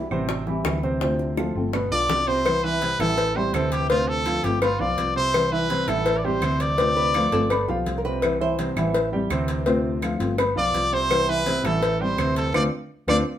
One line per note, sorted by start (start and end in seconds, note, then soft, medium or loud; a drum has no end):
0.00 0.10 E3 medium
0.00 0.11 G3 medium
0.00 0.10 B3 medium
0.11 0.61 A1 medium
0.11 0.41 C3 loud
0.11 0.28 E3 soft
0.11 0.28 G3 medium
0.11 0.29 B3 medium
0.11 0.41 C4 medium
0.11 0.28 E4 medium
0.11 0.41 C5 loud
0.11 claves medium
0.29 muted nylon-string guitar stroke medium
0.29 high bongo medium
0.47 0.77 E3 medium
0.47 0.64 G3 medium
0.47 0.65 C4 medium
0.47 0.64 E4 medium
0.47 0.77 E4 medium
0.47 0.77 G4 medium
0.47 high bongo soft
0.65 1.50 D2 medium
0.65 1.00 E3 medium
0.65 1.01 G3 medium
0.65 1.01 C4 medium
0.65 1.01 E4 medium
0.65 high bongo medium
0.65 low bongo medium
0.65 claves medium
0.83 0.98 C3 medium
0.83 0.98 C4 medium
0.83 0.98 C5 medium
0.83 high bongo soft
1.01 1.31 C3 medium
1.01 1.36 D3 medium
1.01 1.37 A3 medium
1.01 1.31 C4 medium
1.01 1.37 C4 medium
1.01 1.38 F4 medium
1.01 1.31 C5 medium
1.01 high bongo medium
1.19 high bongo soft
1.37 1.55 D3 medium
1.37 1.67 F3 medium
1.37 1.55 A3 medium
1.37 1.55 C4 medium
1.37 1.67 F4 medium
1.37 1.54 F4 medium
1.37 1.67 A4 medium
1.37 high bongo medium
1.37 claves medium
1.55 1.89 G1 medium
1.55 1.73 A3 medium
1.55 1.73 C4 medium
1.55 1.73 F4 medium
1.73 1.88 B2 medium
1.73 1.88 B3 medium
1.73 1.89 B4 medium
1.73 muted nylon-string guitar stroke medium
1.73 high bongo medium
1.73 claves medium
1.91 2.08 B1 medium
1.91 2.21 D3 medium
1.91 2.09 B3 medium
1.91 2.21 D4 medium
1.91 2.09 F4 medium
1.91 2.21 F4 medium
1.91 2.29 D5 loud
1.91 high bongo soft
2.09 2.94 C2 medium
2.09 2.45 G3 soft
2.09 2.45 B3 medium
2.09 2.46 F4 medium
2.09 high bongo medium
2.09 low bongo medium
2.27 2.42 C3 medium
2.27 2.43 C4 medium
2.27 2.66 C5 loud
2.27 2.43 C5 medium
2.27 high bongo soft
2.45 2.81 C3 medium
2.45 2.80 E3 medium
2.45 2.81 G3 medium
2.45 2.82 B3 medium
2.45 2.82 E4 medium
2.45 cowbell loud
2.45 claves medium
2.64 2.79 E3 medium
2.64 2.79 E4 medium
2.64 3.02 B4 loud
2.64 2.79 E5 medium
2.81 2.97 C3 medium
2.81 2.99 E3 medium
2.81 2.99 G3 medium
2.81 2.99 B3 medium
2.81 2.97 C4 medium
2.81 2.98 E4 medium
2.81 2.97 C5 medium
2.81 cowbell medium
2.99 3.50 A1 medium
2.99 3.29 E3 medium
2.99 3.16 E3 medium
2.99 3.17 G3 medium
2.99 3.17 B3 medium
2.99 3.17 E4 medium
2.99 3.30 E4 medium
2.99 3.38 A4 loud
2.99 3.30 E5 medium
2.99 cowbell medium
2.99 claves medium
3.18 muted nylon-string guitar stroke medium
3.18 cowbell loud
3.35 3.51 G3 medium
3.35 3.53 G3 medium
3.35 3.54 C4 medium
3.35 3.53 E4 medium
3.35 3.51 G4 medium
3.35 3.56 C5 medium
3.35 3.51 G5 medium
3.53 4.38 D2 loud
3.53 3.84 C3 medium
3.53 3.89 E3 medium
3.53 3.90 G3 medium
3.53 3.84 C4 medium
3.53 3.90 C4 medium
3.53 3.90 E4 medium
3.53 3.73 A4 medium
3.53 3.84 C5 medium
3.53 cowbell medium
3.53 claves medium
3.72 3.89 G4 loud
3.72 cowbell medium
3.89 4.20 C3 medium
3.89 4.24 D3 medium
3.89 4.25 A3 medium
3.89 4.20 C4 medium
3.89 4.25 C4 medium
3.89 4.10 F4 loud
3.89 4.26 F4 medium
3.89 4.20 C5 medium
3.89 cowbell loud
4.08 4.46 A4 loud
4.25 4.43 D3 medium
4.25 4.56 F3 medium
4.25 4.43 A3 medium
4.25 4.43 C4 medium
4.25 4.56 F4 medium
4.25 4.42 F4 medium
4.25 4.56 F5 medium
4.25 cowbell medium
4.25 claves medium
4.44 4.77 G1 medium
4.44 4.61 A3 medium
4.44 4.62 C4 medium
4.44 4.61 F4 medium
4.44 4.62 G4 loud
4.44 cowbell medium
4.62 4.77 B3 medium
4.62 4.82 F4 medium
4.62 4.77 B4 medium
4.62 4.77 B5 medium
4.62 muted nylon-string guitar stroke medium
4.62 cowbell loud
4.62 claves medium
4.79 4.96 B1 medium
4.79 5.09 F3 medium
4.79 4.98 B3 medium
4.79 4.97 F4 medium
4.79 5.10 F4 loud
4.79 5.16 D5 medium
4.79 5.10 F5 medium
4.98 5.82 C2 medium
4.98 5.33 G3 soft
4.98 5.34 B3 medium
4.98 5.34 F4 medium
4.98 cowbell medium
5.16 5.46 C3 medium
5.16 5.54 C5 loud
5.16 5.46 C5 medium
5.33 5.69 C3 medium
5.33 5.68 E3 medium
5.33 5.69 G3 medium
5.33 5.70 B3 medium
5.33 5.70 E4 medium
5.33 cowbell loud
5.33 claves medium
5.52 5.67 E3 medium
5.52 5.67 E4 medium
5.52 5.90 B4 loud
5.52 5.67 E5 medium
5.70 5.85 C3 medium
5.70 5.87 E3 medium
5.70 5.88 G3 medium
5.70 5.88 B3 medium
5.70 5.85 C4 medium
5.70 5.87 E4 medium
5.70 5.85 C5 medium
5.70 cowbell medium
5.88 6.38 A1 medium
5.88 6.18 E3 medium
5.88 6.05 E3 medium
5.88 6.05 G3 medium
5.88 6.06 B3 medium
5.88 6.05 E4 medium
5.88 6.18 E4 medium
5.88 6.19 A4 loud
5.88 6.18 E5 medium
5.88 cowbell medium
5.88 claves medium
6.06 muted nylon-string guitar stroke medium
6.06 cowbell loud
6.18 6.26 D5 medium
6.24 6.39 G3 medium
6.24 6.42 G3 medium
6.24 6.42 C4 medium
6.24 6.41 E4 medium
6.24 6.39 G4 loud
6.24 6.62 C5 medium
6.24 6.39 G5 medium
6.42 7.26 D2 loud
6.42 6.72 C3 medium
6.42 6.77 E3 soft
6.42 6.78 G3 medium
6.42 6.72 C4 medium
6.42 6.78 C4 medium
6.42 6.79 E4 medium
6.42 6.72 C5 medium
6.42 cowbell medium
6.42 claves medium
6.60 7.69 D5 loud
6.60 cowbell medium
6.78 7.08 C3 medium
6.78 7.13 D3 medium
6.78 7.14 A3 medium
6.78 7.08 C4 medium
6.78 7.14 C4 medium
6.78 7.14 F4 medium
6.78 7.08 C5 medium
6.78 cowbell loud
6.97 7.32 B4 loud
7.14 7.32 D3 medium
7.14 7.44 F3 medium
7.14 7.32 A3 medium
7.14 7.32 C4 medium
7.14 7.44 F4 medium
7.14 7.31 F4 medium
7.14 7.44 F5 medium
7.14 cowbell medium
7.14 claves medium
7.32 7.66 G1 medium
7.32 7.50 A3 medium
7.32 7.50 C4 medium
7.32 7.49 F4 medium
7.32 7.70 A4 medium
7.32 cowbell medium
7.50 7.65 B3 medium
7.50 7.65 B4 medium
7.50 7.66 B5 medium
7.50 muted nylon-string guitar stroke medium
7.50 cowbell loud
7.50 claves medium
7.68 7.85 B1 medium
7.68 7.98 F3 medium
7.68 7.86 B3 medium
7.68 7.86 F4 medium
7.68 7.98 F4 medium
7.68 7.98 G4 medium
7.68 7.99 F5 medium
7.86 8.70 C2 medium
7.86 8.22 G3 medium
7.86 8.22 B3 medium
7.86 8.23 F4 medium
7.86 cowbell medium
7.98 8.04 A#4 medium
8.05 8.34 C3 medium
8.05 8.34 C4 medium
8.05 8.38 B4 loud
8.22 8.58 C3 medium
8.22 8.57 E3 medium
8.22 8.58 G3 medium
8.22 8.58 B3 medium
8.22 8.59 E4 medium
8.22 cowbell loud
8.22 claves medium
8.40 8.55 E3 medium
8.40 8.55 E4 medium
8.40 9.09 C5 loud
8.40 8.56 E5 medium
8.58 8.73 C3 medium
8.58 8.75 E3 medium
8.58 8.76 G3 medium
8.58 8.76 B3 medium
8.58 8.73 C4 medium
8.58 8.75 E4 medium
8.58 8.74 C5 medium
8.58 cowbell medium
8.76 9.27 A1 medium
8.76 9.06 E3 medium
8.76 8.93 E3 medium
8.76 8.94 G3 medium
8.76 8.94 B3 medium
8.76 8.94 E4 medium
8.76 9.06 E4 medium
8.76 9.07 E5 medium
8.76 cowbell medium
8.76 claves medium
8.94 muted nylon-string guitar stroke medium
8.94 cowbell loud
9.12 9.27 G3 medium
9.12 9.29 G3 medium
9.12 9.30 C4 medium
9.12 9.29 E4 medium
9.12 9.27 G4 medium
9.12 9.28 G5 medium
9.29 10.14 D2 loud
9.29 9.60 C3 loud
9.29 9.65 E3 medium
9.29 9.66 G3 medium
9.29 9.60 C4 medium
9.29 9.66 C4 soft
9.29 9.66 E4 medium
9.29 9.60 C5 loud
9.29 cowbell medium
9.29 claves medium
9.48 cowbell medium
9.66 9.96 C3 medium
9.66 10.01 D3 medium
9.66 10.02 A3 medium
9.66 9.96 C4 medium
9.66 10.02 C4 medium
9.66 10.03 F4 medium
9.66 9.96 C5 medium
9.66 cowbell loud
10.02 10.19 D3 medium
10.02 10.32 F3 medium
10.02 10.20 A3 medium
10.02 10.20 C4 medium
10.02 10.32 F4 medium
10.02 10.18 F4 medium
10.02 10.32 F5 medium
10.02 cowbell medium
10.02 claves medium
10.20 10.54 G1 loud
10.20 10.37 A3 medium
10.20 10.38 C4 medium
10.20 10.37 F4 medium
10.20 cowbell medium
10.38 10.53 B3 medium
10.38 10.53 B4 medium
10.38 10.53 B5 medium
10.38 muted nylon-string guitar stroke medium
10.38 cowbell loud
10.38 claves medium
10.56 10.73 B1 medium
10.56 10.86 F3 medium
10.56 10.74 B3 medium
10.56 10.73 F4 medium
10.56 10.86 F4 medium
10.56 10.95 D5 loud
10.56 10.86 F5 medium
10.74 11.58 C2 loud
10.74 11.09 G3 soft
10.74 11.10 B3 medium
10.74 11.10 F4 medium
10.74 cowbell medium
10.93 11.22 C3 medium
10.93 11.22 C5 loud
10.93 11.31 C5 loud
11.10 11.45 C3 medium
11.10 11.45 E3 medium
11.10 11.46 G3 medium
11.10 11.46 B3 medium
11.10 11.46 E4 medium
11.10 cowbell loud
11.10 claves medium
11.28 11.43 E3 medium
11.28 11.43 E4 medium
11.28 11.67 B4 loud
11.28 11.44 E5 medium
11.46 11.61 C3 medium
11.46 11.63 E3 medium
11.46 11.64 G3 medium
11.46 11.63 B3 medium
11.46 11.61 C4 medium
11.46 11.62 E4 medium
11.46 11.62 C5 medium
11.46 cowbell medium
11.64 12.14 A1 medium
11.64 11.94 E3 medium
11.64 11.81 E3 medium
11.64 11.81 G3 medium
11.64 11.82 B3 medium
11.64 11.81 E4 medium
11.64 11.94 E4 medium
11.64 12.02 A4 medium
11.64 11.94 E5 loud
11.64 cowbell medium
11.64 claves medium
11.82 muted nylon-string guitar stroke medium
11.82 cowbell loud
12.00 12.15 G3 medium
12.00 12.17 G3 medium
12.00 12.18 C4 medium
12.00 12.18 E4 medium
12.00 12.15 G4 medium
12.00 12.36 C5 medium
12.00 12.16 G5 medium
12.18 12.52 D2 loud
12.18 12.48 C3 medium
12.18 12.53 E3 medium
12.18 12.54 G3 medium
12.18 12.48 C4 medium
12.18 12.53 C4 medium
12.18 12.54 E4 medium
12.18 12.48 C5 loud
12.18 cowbell medium
12.18 claves medium
12.36 12.54 A4 loud
12.36 cowbell medium
12.54 12.68 D2 loud
12.54 12.66 A3 medium
12.54 12.66 C4 loud
12.54 12.66 D4 medium
12.54 12.66 F4 loud
12.54 12.63 D5 loud
12.54 cowbell loud
12.54 claves loud
13.08 13.21 D2 medium
13.08 13.20 A3 loud
13.08 13.20 C4 loud
13.08 13.20 D4 loud
13.08 13.20 F4 loud
13.08 13.17 D5 loud
13.08 cowbell loud
13.08 claves medium